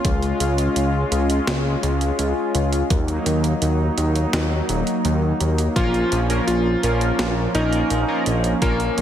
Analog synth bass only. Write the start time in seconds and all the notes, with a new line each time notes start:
0.05 C#2
0.40 C#2
0.76 C#2
1.12 C#2
1.47 C#2
1.83 C#2
2.19 C#2
2.55 C#2
2.90 D#2
3.26 D#2
3.62 D#2
3.98 D#2
4.33 D#2
4.69 D#1
5.05 D#2
5.41 D#2
5.76 A#1
6.12 A#1
6.48 A#1
6.83 A#1
7.19 A#1
7.55 A#1
7.91 A#1
8.26 A#1
8.62 A#1
8.98 A#1